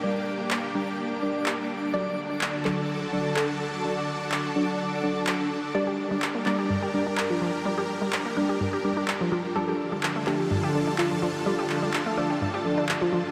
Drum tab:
CP |--x---x-|--xx--x-|--x---x-|--xx--x-|

CP |--x---x-|--xx--x-|-xx---x-|